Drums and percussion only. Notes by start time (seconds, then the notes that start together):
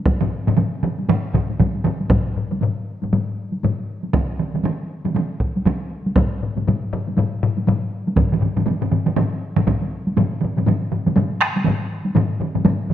0.06 taiko, taiko high
0.21 taiko low-mid, taiko mid
0.47 taiko low-mid, taiko mid, taiko high
0.57 taiko low-mid, taiko mid, taiko high
0.83 taiko low-mid, taiko mid
0.99 taiko high
1.09 taiko low-mid, taiko mid, taiko high
1.34 taiko, taiko low-mid, taiko mid
1.50 taiko high
1.60 taiko, taiko low-mid, taiko mid, taiko high
1.75 taiko high
1.84 taiko low-mid, taiko mid
2.00 taiko high
2.10 taiko, taiko low-mid, taiko high
2.37 taiko low-mid
2.52 taiko low-mid, taiko high
2.62 taiko low-mid, taiko high
3.02 taiko low-mid, taiko high
3.13 taiko low-mid, taiko high
3.53 taiko high
3.63 taiko low-mid, taiko high
4.04 taiko high
4.13 taiko, taiko mid, taiko high
4.40 taiko mid
4.54 taiko mid, taiko high
4.64 taiko mid, taiko high
5.04 taiko mid, taiko high
5.15 taiko mid, taiko high
5.40 taiko
5.56 taiko high
5.66 taiko, taiko mid, taiko high
6.06 taiko high
6.16 taiko, taiko low-mid, taiko high
6.43 taiko low-mid
6.56 taiko low-mid, taiko high
6.67 taiko low-mid, taiko high
6.93 taiko low-mid
7.08 taiko high
7.17 taiko low-mid, taiko high
7.43 taiko low-mid
7.57 taiko high
7.67 taiko low-mid, taiko high
8.07 taiko high
8.17 taiko, taiko low-mid, taiko mid, taiko high
8.33 taiko low-mid, taiko mid
8.42 taiko low-mid, taiko mid
8.57 taiko low-mid, taiko mid, taiko high
8.66 taiko low-mid, taiko mid, taiko high
8.81 taiko low-mid, taiko mid
8.91 taiko low-mid, taiko mid
9.06 taiko low-mid, taiko mid
9.16 taiko low-mid, taiko mid, taiko high
9.56 taiko low-mid, taiko mid, taiko high
9.67 taiko, taiko low-mid, taiko mid, taiko high
9.82 taiko high
10.07 taiko high
10.17 taiko low-mid, taiko mid, taiko high
10.41 taiko low-mid, taiko mid
10.57 taiko low-mid, taiko mid, taiko high
10.66 taiko low-mid, taiko mid, taiko high
10.92 taiko low-mid, taiko mid
11.06 taiko low-mid, taiko mid, taiko high
11.16 taiko low-mid, taiko mid, taiko high
11.41 taiko rim
11.56 taiko high
11.65 taiko low-mid, taiko mid, taiko high
12.05 taiko high
12.15 taiko low-mid, taiko mid, taiko high
12.40 taiko low-mid, taiko mid
12.55 taiko low-mid, taiko mid, taiko high
12.65 taiko low-mid, taiko mid, taiko high
12.90 taiko low-mid, taiko mid